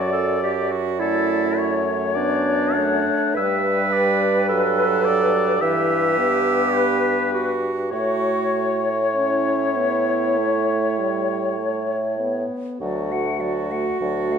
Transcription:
Already playing: bassoon F#2, french horn F#3, clarinet F#4, oboe D5, flute D5
0.13 clarinet A4
0.43 clarinet G4
0.72 clarinet F#4
0.99 french horn A3, clarinet E4, oboe A4, flute D5
1.56 flute C#5, oboe C#5
2.15 french horn B3, clarinet D4, oboe D5
2.74 french horn A3, oboe F#5
3.35 bassoon G2, french horn G3, clarinet B4, flute B4, oboe E5
3.92 oboe D5
4.48 french horn F#3, clarinet A4, oboe B4
5.05 oboe D5
5.61 bassoon G2, french horn E3, clarinet G4, flute B4, oboe E5
6.19 french horn B3
6.76 oboe B4
7.33 clarinet F#4
7.91 bassoon A2, french horn A3, clarinet F#4, oboe C#5, flute C#5
9.15 french horn C#4, clarinet E4
9.77 french horn B3
10.38 french horn A3
10.98 french horn G3
11.59 french horn A3
12.20 french horn B3
12.79 bassoon D2, french horn F#3, clarinet F#4, flute D5
13.11 french horn A3, flute F#5
13.41 french horn F#3, flute D5
13.71 french horn A3, flute F#5
14.01 bassoon D2, french horn F#3, flute D5
14.30 french horn A3, flute F#5

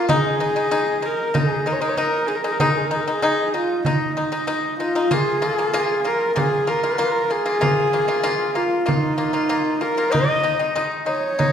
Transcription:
Already playing: horsehead fiddle F4
0.09 pipa G#3 D#4, horsehead fiddle G#4, frame drum
0.40 pipa G#3 D#4
0.56 pipa G#3 D#4, frame drum
0.71 pipa G#3 D#4, frame drum
1.02 pipa G#3 D#4, horsehead fiddle A#4, frame drum
1.34 pipa G#3 D#4, horsehead fiddle G#4, frame drum
1.66 pipa G#3 D#4, horsehead fiddle A#4
1.73 horsehead fiddle C#5
1.81 pipa G#3 D#4, horsehead fiddle A#4, frame drum
1.89 horsehead fiddle C#5
1.97 pipa G#3 D#4, horsehead fiddle A#4, frame drum
2.27 pipa G#3 D#4, horsehead fiddle G#4
2.35 horsehead fiddle A#4
2.44 pipa G#3 D#4, horsehead fiddle G#4
2.51 horsehead fiddle A#4
2.60 pipa G#3 D#4, horsehead fiddle G#4, frame drum
2.69 horsehead fiddle A#4
2.77 horsehead fiddle G#4
2.84 horsehead fiddle A#4
2.91 pipa G#3 D#4, horsehead fiddle G#4
3.00 horsehead fiddle A#4
3.07 pipa G#3 D#4, horsehead fiddle G#4, frame drum
3.22 pipa G#3 D#4, frame drum
3.47 horsehead fiddle G#4
3.54 pipa G#3 D#4, horsehead fiddle F4, frame drum
3.85 pipa G#3 D#4, horsehead fiddle D#4, frame drum
4.17 pipa G#3 D#4
4.32 pipa G#3 D#4, frame drum
4.47 pipa G#3 D#4, frame drum
4.80 pipa G#3 D#4, horsehead fiddle F4
4.95 pipa G#3 D#4
5.11 pipa A#3 F4, horsehead fiddle G#4, frame drum
5.42 pipa A#3 F4
5.58 pipa A#3 F4, frame drum
5.73 pipa A#3 F4, frame drum
6.05 pipa A#3 F4, horsehead fiddle A#4, frame drum
6.36 pipa A#3 F4, horsehead fiddle G#4, frame drum
6.67 pipa A#3 F4, horsehead fiddle A#4
6.83 pipa A#3 F4, frame drum
6.98 pipa A#3 F4, frame drum
7.30 pipa A#3 F4, horsehead fiddle G#4
7.46 pipa A#3 F4
7.61 pipa A#3 F4, frame drum
7.93 pipa A#3 F4, frame drum
8.08 pipa A#3 F4, frame drum
8.23 pipa A#3 F4, frame drum
8.55 pipa A#3 F4, horsehead fiddle F4, frame drum
8.81 horsehead fiddle F4
8.86 pipa A#3 F4, horsehead fiddle D#4, frame drum
9.18 pipa A#3 F4
9.33 pipa A#3 F4, frame drum
9.49 pipa A#3 F4, frame drum
9.81 pipa A#3 F4, horsehead fiddle A#4
9.97 pipa A#3 F4
10.12 pipa G#3 D#4, horsehead fiddle D#5, frame drum
10.43 pipa G#3 D#4
10.59 pipa G#3 D#4, frame drum
10.76 pipa G#3 D#4, frame drum
11.06 pipa G#3 D#4, horsehead fiddle C#5, frame drum
11.39 pipa G#3 D#4, frame drum

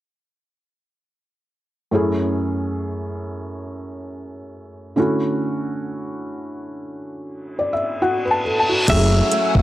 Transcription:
1.91 felt piano F#2 A3 C#4 E4 G#4
4.96 felt piano D3 A3 C#4 E4 F#4
7.14 reverse cymbal
7.59 felt piano D5
7.73 felt piano E5
8.02 felt piano F#4 F#5
8.25 felt piano B4
8.31 felt piano A5
8.45 felt piano A4
8.60 felt piano A5
8.69 felt piano F#4
8.88 analog synth bass F#1, nylon-string guitar F#3 G#4, felt piano A3 C#4 G4, ambient pad A3 F#5 G#5 E6, clean electric guitar E5, kick, closed hi-hat, crash, downlifter
8.98 felt piano G#4
9.32 nylon-string guitar A3, closed hi-hat
9.55 analog synth bass G#1, kick

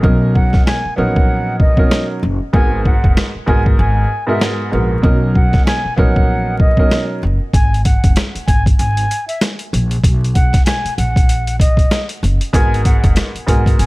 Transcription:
0.02 upright bass B1, upright piano B2 F#3 C#4 D#4 A#4, kick
0.35 flute F#5, kick
0.53 kick, snare
0.66 flute G#5, cross-stick, snare
0.85 muted upright bass stroke
0.96 upright bass A#1, upright piano F#3 B3 C#4 D#4 A#4, flute F#5
1.16 kick
1.60 flute D#5, kick
1.77 upright piano B2 F#3 C#4 D#4 A#4, kick
1.91 cross-stick, snare
2.23 upright bass F#1
2.53 upright bass G#1, upright piano G#2 G#3 B3 F#4 A#4, flute G#5, kick
2.85 flute F#5, kick
3.04 upright bass F#1, kick
3.17 cross-stick, snare
3.35 muted upright bass stroke
3.46 upright bass G#1, upright piano G#2 G#3 B3 F#4 A#4, flute G#5, kick
3.66 kick
3.79 upright bass G#1, flute G#5
4.27 upright piano G#2 G#3 B3 F#4 A#4, flute E5
4.41 cross-stick, snare
4.71 upright bass A#1, upright piano G#2 G#3 B3 F#4 A#4
5.02 upright bass B1, upright piano B2 F#3 C#4 D#4 A#4, kick
5.35 flute F#5, kick
5.53 kick, snare
5.66 flute G#5, cross-stick, snare
5.85 muted upright bass stroke
5.96 upright bass A#1, upright piano F#3 B3 C#4 D#4 A#4, flute F#5, kick
6.16 kick
6.60 flute D#5, kick
6.77 upright piano B2 F#3 C#4 D#4 A#4, kick
6.91 cross-stick, snare
7.23 upright bass F#1
7.54 upright bass G#1, flute G#5, kick, closed hi-hat
7.74 closed hi-hat
7.85 flute F#5, kick, closed hi-hat
8.04 upright bass F#1, kick, closed hi-hat
8.16 cross-stick, snare, closed hi-hat
8.35 muted upright bass stroke, closed hi-hat
8.47 upright bass G#1, flute G#5, kick, closed hi-hat
8.66 kick, closed hi-hat
8.79 upright bass G#1, flute G#5, closed hi-hat
8.97 closed hi-hat
9.11 closed hi-hat
9.28 flute E5, closed hi-hat
9.41 cross-stick, snare, closed hi-hat
9.59 closed hi-hat
9.73 upright bass A#1, closed hi-hat
9.91 closed hi-hat
10.04 upright bass B1, kick, closed hi-hat
10.24 closed hi-hat
10.34 flute F#5, kick, closed hi-hat
10.53 kick, snare, closed hi-hat
10.66 flute G#5, cross-stick, snare, closed hi-hat
10.85 muted upright bass stroke, closed hi-hat
10.97 upright bass A#1, flute F#5, closed hi-hat
11.16 kick, closed hi-hat
11.29 closed hi-hat
11.47 closed hi-hat
11.60 flute D#5, kick, closed hi-hat
11.77 kick, closed hi-hat
11.91 cross-stick, snare, closed hi-hat
12.09 closed hi-hat
12.23 upright bass F#1, closed hi-hat
12.41 closed hi-hat
12.53 upright bass G#1, upright piano G#2 G#3 B3 F#4 A#4, flute G#5, kick, closed hi-hat
12.74 closed hi-hat
12.85 flute F#5, kick, closed hi-hat
13.04 upright bass F#1, kick, closed hi-hat
13.16 cross-stick, snare, closed hi-hat
13.35 muted upright bass stroke, closed hi-hat
13.46 upright bass G#1, upright piano G#2 G#3 B3 F#4 A#4, flute G#5, kick, closed hi-hat
13.66 kick, closed hi-hat
13.79 upright bass G#1, flute G#5, closed hi-hat

